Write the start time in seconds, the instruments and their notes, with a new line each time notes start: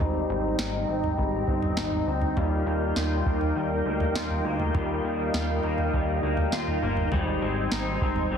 Already playing: clean electric guitar C4, string machine D#4 C5 G5
0.00 analog synth bass G#1, clean electric guitar G3 D#4, string machine A#5
0.29 analog synth bass G#1, clean electric guitar C4
0.58 analog synth bass G#1, clean electric guitar D#4, snare
0.88 analog synth bass G#1, clean electric guitar C4
1.04 floor tom
1.17 analog synth bass G#1, clean electric guitar G3, kick
1.47 analog synth bass G1, clean electric guitar C4, kick
1.62 floor tom
1.77 analog synth bass G#1, clean electric guitar D#4, snare
1.92 floor tom
2.07 analog synth bass D2, clean electric guitar C4
2.21 floor tom
2.36 analog synth bass D#2, clean electric guitar G3 F4, string machine A#4 F5, kick, floor tom
2.66 analog synth bass D#2, clean electric guitar A#3
2.96 analog synth bass D#2, clean electric guitar F4, snare
3.26 analog synth bass D#2, clean electric guitar A#3, kick
3.41 floor tom
3.56 analog synth bass D#2, clean electric guitar G3
3.85 analog synth bass D2, clean electric guitar A#3
4.00 floor tom
4.15 analog synth bass D#2, clean electric guitar F4, snare
4.30 floor tom
4.45 analog synth bass D2, clean electric guitar A#3
4.59 floor tom
4.74 analog synth bass D#2, clean electric guitar G3 F4, kick, floor tom
5.04 analog synth bass D#2, clean electric guitar A#3
5.34 analog synth bass D#2, clean electric guitar F4, snare
5.63 analog synth bass D#2, clean electric guitar A#3, floor tom
5.78 floor tom
5.93 analog synth bass D#2, clean electric guitar G3, kick
6.23 analog synth bass D2, clean electric guitar A#3
6.37 floor tom
6.52 analog synth bass D#2, clean electric guitar F4, snare
6.67 floor tom
6.82 analog synth bass G1, clean electric guitar A#3
6.97 floor tom
7.12 analog synth bass G#1, clean electric guitar G3 D#4, string machine C5 G#5, kick, floor tom
7.42 analog synth bass G#1, clean electric guitar C4
7.72 analog synth bass G#1, clean electric guitar D#4, snare
8.01 analog synth bass G#1, clean electric guitar C4, kick
8.16 floor tom
8.30 analog synth bass G#1, clean electric guitar G3